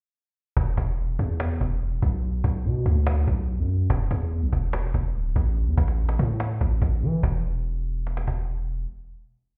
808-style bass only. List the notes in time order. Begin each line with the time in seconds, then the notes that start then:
0.57 E1
0.77 E1
1.19 E2
1.61 E1
2.02 B1
2.44 B1
2.65 B2
2.86 D2
3.28 B1
3.59 F#2
3.90 E1
4.11 E2
4.42 B1
4.53 E1
4.94 E1
5.15 D1
5.36 A1
5.67 E2
5.78 A1
6.19 A2
6.61 A1
6.82 A1
7.03 E3
7.23 E1